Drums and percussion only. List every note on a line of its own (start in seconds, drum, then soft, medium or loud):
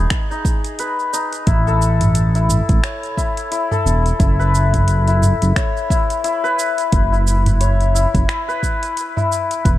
0.10 finger snap medium
0.10 kick loud
0.10 closed hi-hat medium
0.10 shaker soft
0.31 shaker soft
0.45 kick loud
0.45 shaker medium
0.64 closed hi-hat soft
0.64 shaker soft
0.79 closed hi-hat medium
0.79 shaker soft
0.99 shaker soft
1.14 shaker medium
1.33 closed hi-hat soft
1.33 shaker soft
1.47 kick loud
1.47 closed hi-hat medium
1.47 shaker soft
1.68 shaker soft
1.82 shaker medium
2.01 closed hi-hat soft
2.01 mid tom medium
2.01 shaker soft
2.15 closed hi-hat medium
2.15 shaker soft
2.35 closed hi-hat soft
2.35 shaker soft
2.49 mid tom medium
2.49 shaker medium
2.69 kick loud
2.69 closed hi-hat soft
2.69 shaker soft
2.84 finger snap medium
2.84 closed hi-hat medium
2.84 shaker soft
3.03 closed hi-hat soft
3.03 shaker soft
3.17 kick medium
3.17 shaker medium
3.37 closed hi-hat soft
3.37 shaker soft
3.52 closed hi-hat medium
3.52 shaker soft
3.71 mid tom medium
3.71 shaker soft
3.87 shaker medium
4.06 closed hi-hat soft
4.06 shaker soft
4.20 kick loud
4.20 closed hi-hat medium
4.20 shaker soft
4.41 shaker soft
4.55 shaker medium
4.74 kick medium
4.74 closed hi-hat soft
4.74 mid tom medium
4.74 shaker soft
4.88 closed hi-hat medium
4.88 shaker soft
5.08 closed hi-hat soft
5.08 shaker soft
5.22 mid tom medium
5.22 shaker medium
5.42 closed hi-hat soft
5.42 shaker soft
5.56 finger snap medium
5.56 kick loud
5.56 closed hi-hat medium
5.56 shaker soft
5.77 shaker soft
5.90 kick loud
5.90 shaker medium
6.10 closed hi-hat soft
6.10 shaker soft
6.24 closed hi-hat medium
6.24 shaker soft
6.45 shaker soft
6.59 shaker medium
6.78 closed hi-hat soft
6.78 shaker soft
6.92 kick loud
6.92 closed hi-hat medium
6.92 shaker soft
7.13 shaker soft
7.27 shaker medium
7.46 closed hi-hat soft
7.46 mid tom medium
7.46 shaker soft
7.61 closed hi-hat medium
7.61 shaker soft
7.81 closed hi-hat soft
7.81 shaker soft
7.96 shaker medium
8.15 kick loud
8.15 closed hi-hat soft
8.15 shaker soft
8.29 finger snap medium
8.29 closed hi-hat medium
8.29 shaker soft
8.50 shaker soft
8.63 kick medium
8.63 shaker medium
8.83 closed hi-hat soft
8.83 shaker soft
8.97 closed hi-hat medium
8.97 shaker soft
9.17 mid tom medium
9.17 shaker soft
9.32 shaker medium
9.51 closed hi-hat soft
9.51 shaker soft
9.65 kick loud
9.65 closed hi-hat medium
9.65 shaker soft